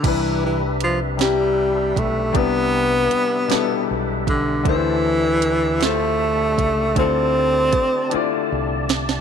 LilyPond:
<<
  \new Staff \with { instrumentName = "Tonewheel organ" } { \time 6/8 \key c \major \tempo 4. = 52 << { <b' e''>2.~ | <b' e''>2. | a''2. | d''2. | } \\ { <d' g'>2.~ | <d' g'>2.~ | <d' g'>2.~ | <d' g'>2. | } >> }
  \new Staff \with { instrumentName = "Grand piano" } { \time 6/8 \key c \major <c g d' e' b'>4~ <c g d' e' b'>16 r16 <c g d' e' g'>4~ <c g d' e' g'>16 r16 | <c g d' e' b'>4~ <c g d' e' b'>16 r16 <b, g d' e' a'>4~ <b, g d' e' a'>16 r16 | <d a d' e' c''>4~ <d a d' e' c''>16 r16 <d a e' f' c''>4~ <d a e' f' c''>16 r16 | <d a e' f' a'>4~ <d a e' f' a'>16 r16 <d a e' f' d''>4~ <d a e' f' d''>16 r16 | }
  \new Staff \with { instrumentName = "Tenor saxophone" } { \clef bass \time 6/8 \key c \major e8 e8 f8 g4 a8 | b2 r8 d8 | e4. a4. | c'2 r4 | }
  \new Staff \with { instrumentName = "Fingered electric bass" } { \clef bass \time 6/8 \key c \major c,2~ c,8 b,,8 | c,4 r4 b,,4 | d,2~ d,8 des,8 | d,4 r4 c,4 | }
  \new DrumStaff \with { instrumentName = "Drums" } \drummode { \time 6/8 <cymc hh bd>4 hh8 <hh sn>4 <hh bd>8 | <hh bd>4 hh8 <hh sn>4 <hh bd>8 | <hh bd>4 hh8 <hh sn>4 <hh bd>8 | <hh bd>4 <hh bd>8 hh4 <hh sn>16 sn16 | }
>>